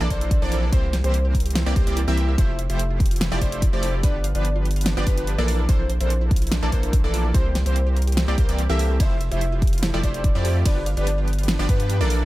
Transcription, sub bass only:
0.01 A#1
0.10 A#1
0.42 A#1
0.72 C2
1.04 C2
1.66 C2
1.76 C2
1.87 C2
2.08 C2
2.38 F1
2.70 F1
3.32 F1
3.41 F1
3.73 F1
4.04 G1
4.35 G1
4.97 G1
5.07 G1
5.38 A#1
5.69 A#1
6.01 A#1
6.63 A#1
6.72 A#1
7.04 A#1
7.34 C2
7.66 C2
8.28 C2
8.38 C2
8.49 C2
8.70 C2
9.00 F1
9.32 F1
9.94 F1
10.03 F1
10.35 F2
10.66 G1
10.97 G1
11.59 G1
11.69 G2
12.01 A#1

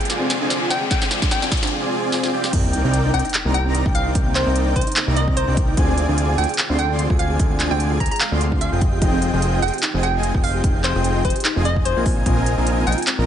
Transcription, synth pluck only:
0.71 G5
0.91 G5
1.31 G5
3.14 G5
3.54 G5
3.95 F5
4.35 C5
4.76 C5
5.16 D#5
5.37 C5
6.38 G5
6.79 G5
7.19 F5
7.71 G5
8.00 A#5
8.11 A#5
8.21 F5
8.61 F5
9.62 G5
10.03 G5
10.44 F5
10.84 C5
11.25 C5
11.65 D#5
11.85 C5
12.87 G5

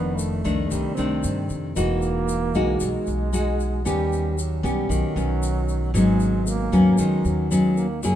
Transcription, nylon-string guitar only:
Already playing: F2 D#3 A3 D4
0.44 D#3 A3 D4
0.71 C3
0.97 D#3 A3 D4
1.76 E3 G#3 D#4 F#4
2.55 G#3 D#4 F#4
2.81 B2
3.33 G#3 D#4 F#4
3.85 D#3 B3 C#4 G4
4.63 B3 C#4 G4
4.89 D#3
5.16 B3 C#4
5.94 G#2 F#3 B3 C#4
6.72 F#3 B3 C#4
6.99 D#3
7.51 F#3 B3 C#4
8.04 F#3 A#3 E4 G#4

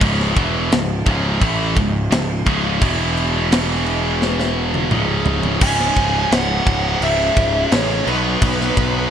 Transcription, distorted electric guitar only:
0.01 C#2 G#2 C#3
0.36 E2 B2 E3
0.71 C#2 G#2
1.06 C#2 G#2 C#3
1.41 A2 E3 A3
1.76 C#2 G#2
2.11 C#2 G#2
2.46 C#2 G#2 C#3
2.81 E2 B2 E3
4.91 C#2 G#2 C#3
5.60 C#2 G#2 C#3
8.06 B2 F#3 B3

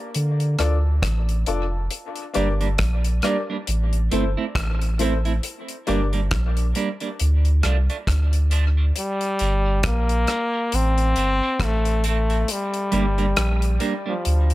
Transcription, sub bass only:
0.16 D3
0.59 D2
1.03 A1
1.48 F1
2.36 G1
2.79 A#1
3.68 A1
4.12 G1
4.56 A1
5.89 G1
6.32 A#1
7.21 D2
7.65 C2
8.08 D2
9.41 G1
9.85 A#1
10.73 A1
11.17 G1
11.60 A1
12.93 G1
13.38 A#1
14.26 D2

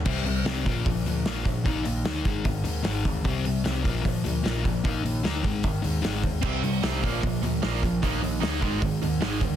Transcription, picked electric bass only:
0.06 C2
0.24 C2
0.45 C2
0.66 A#1
0.86 A#1
1.04 D2
1.24 A#1
1.46 A#1
1.66 A#1
1.85 A#1
2.05 D2
2.26 G#1
2.45 G#1
2.64 D#2
2.86 G#1
3.05 D2
3.25 C2
3.47 C2
3.66 C2
3.85 A#1
4.05 A#1
4.25 D2
4.45 A#1
4.65 A#1
4.85 A#1
5.04 A#1
5.23 D2
5.45 G#1
5.65 G#1
5.84 D#2
6.04 G#1
6.24 D#2
6.43 C2
6.62 C2
6.82 C2
7.04 A#1
7.24 A#1
7.41 D2
7.63 A#1
7.83 A#1
8.04 A#1
8.22 A#1
8.42 D2
8.62 G#1
8.82 G#1
9.02 D#2
9.22 G#1
9.42 D2

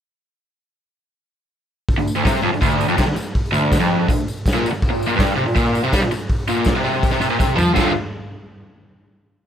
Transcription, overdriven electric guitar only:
1.98 D2
2.16 D2
2.25 C3
2.43 F2
2.53 D2
2.61 D2
2.88 F2
2.97 C3
3.07 D2
3.15 muted overdriven electric guitar stroke
3.52 D2
3.80 F2
4.09 D2
4.54 A#2
4.72 muted overdriven electric guitar stroke
4.90 A#2
5.07 A#2
5.16 G2
5.36 C3
5.46 A#2
5.55 A#2
5.84 C3
5.93 G3
6.01 A#2
6.12 muted overdriven electric guitar stroke
6.49 A#2
6.75 C3
6.84 C3
7.12 C3
7.21 C3
7.30 A#2
7.39 C3
7.55 F3
7.74 D2 A2 D3 A3 F4

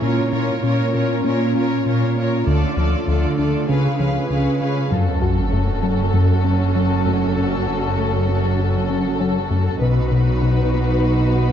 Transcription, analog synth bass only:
0.02 A#2
0.32 A#2
0.63 A#2
0.95 A#2
1.25 A#2
1.56 A#2
1.86 A#2
2.16 A#3
2.47 D2
2.77 D2
3.07 D2
3.38 D2
3.69 C#2
4.00 C#2
4.30 C#2
4.61 C#3
4.91 F#2
5.22 F#2
5.53 F#2
5.83 F#3
6.14 F#2
6.45 F#3
6.75 F#3
7.06 F#2
7.37 F#2
7.68 F#2
7.97 F#2
8.28 F#3
8.58 F#2
8.89 F#3
9.20 F#3
9.50 F#2
9.81 B2
10.12 B2
10.42 B2
10.74 B3
11.04 B2
11.34 B3

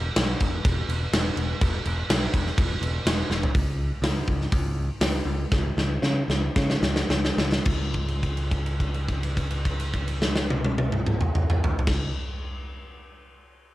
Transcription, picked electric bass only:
0.17 B1
0.41 E1
0.65 E1
0.89 E1
1.13 E1
1.37 E1
1.62 E1
1.86 E1
2.10 B1
2.34 E1
2.58 E1
2.82 E1
3.06 E1
3.30 E1
3.55 C#2
4.02 C#2
4.28 C#2
4.52 C#2
5.01 C#2
5.25 C#2
5.52 C#2
5.77 C#2
6.02 C#3
6.28 C#2
6.56 C#3
6.82 C#2
7.09 C#2
7.37 C#2
7.66 C#2
11.87 C#2

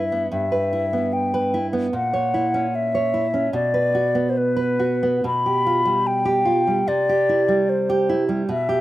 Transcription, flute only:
Already playing: E5
0.32 E5
1.13 G5
1.94 F#5
2.75 E5
3.54 D5
4.30 C5
4.37 B4
5.26 B5
6.07 G5
6.88 D5
7.69 C5
8.51 E5

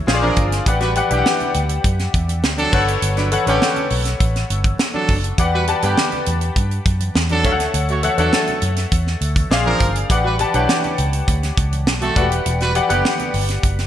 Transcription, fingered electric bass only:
0.07 A#1
0.37 G1
0.66 A1
1.11 B1
1.55 D2
1.84 F#2
2.14 E2
2.44 D2
2.73 G1
3.02 G1
3.47 A1
3.91 B1
4.20 A1
4.50 G1
5.09 F#1
5.38 E2
5.83 G2
6.27 E2
6.56 G2
6.86 F#2
7.15 E2
7.45 D2
7.74 D2
8.18 E2
8.62 F#2
8.92 E2
9.21 D2
9.50 A#1
9.81 G1
10.10 A1
10.54 B1
10.98 C#2
11.28 D2
11.58 C#2
11.87 B1
12.16 E1
12.46 E1
12.90 F#1
13.34 G1
13.64 F#1

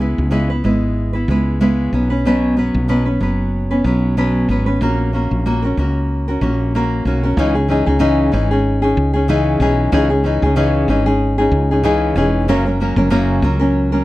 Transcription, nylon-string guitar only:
0.00 G#3 B3 E4 B4
0.31 C#3 G#3 B3 E4 B4
0.50 B3 E4 B4
0.64 G#3 B3 E4 B4
1.13 B3 E4 B4
1.29 G#3 B3 E4 B4
1.60 C#3 G#3 B3 E4 B4
1.93 F#3 B3 C#4 B4
2.10 B3 C#4 B4
2.25 B2 F#3 B3 C#4 B4
2.57 F#3 B3 C#4 B4
2.88 B2 F#3 B3 C#4 B4
3.05 B3 C#4 B4
3.20 F#3 B3 C#4 B4
3.71 B3 C#4 B4
3.85 F#3 B3 C#4 B4
4.17 B2 F#3 B3 C#4 B4
4.49 F#3 B3 C#4 B4
4.66 B3 C#4 B4
4.81 A#3 C#4 F#4 A#4
5.13 A#3 C#4 F#4 A#4
5.46 A#3 C#4 F#4 A#4
5.62 C#4 F#4 A#4
5.78 A#3 C#4 F#4 A#4
6.28 C#4 F#4 A#4
6.41 A#3 C#4 F#4 A#4
6.75 A#3 C#4 F#4 A#4
7.06 A#3 C#4 F#4 A#4
7.23 C#4 F#4 A#4
7.38 C#3 E3 C#4 D#4 G#4
7.55 C#4 D#4 G#4
7.68 E3 C#4 D#4 G#4
7.86 C#4 D#4 G#4
7.99 C#3 E3 C#4 D#4 G#4
8.32 E3 C#4 D#4 G#4
8.51 C#4 D#4 G#4
8.82 C#4 D#4 G#4
9.13 C#4 D#4 G#4
9.28 C#3 E3 C#4 D#4 G#4
9.60 E3 C#4 D#4 G#4
9.92 C#3 E3 C#4 D#4 G#4
10.10 C#4 D#4 G#4
10.24 E3 C#4 D#4 G#4
10.43 C#4 D#4 G#4
10.56 C#3 E3 C#4 D#4 G#4
10.89 E3 C#4 D#4 G#4
11.06 C#4 D#4 G#4
11.38 C#4 D#4 G#4
11.71 C#4 D#4 G#4
11.83 C#3 E3 C#4 D#4 G#4
12.16 E3 C#4 D#4 G#4
12.48 F#2 C#3 F#3 A#3 C#4 A#4
12.66 F#3 A#3 C#4 A#4
12.80 F#3 A#3 C#4 A#4
12.97 F#3 A#3 C#4 A#4
13.10 F#2 C#3 F#3 A#3 C#4 A#4
13.43 F#3 A#3 C#4 A#4
13.59 F#3 A#3 C#4 A#4
13.92 F#3 A#3 C#4 A#4

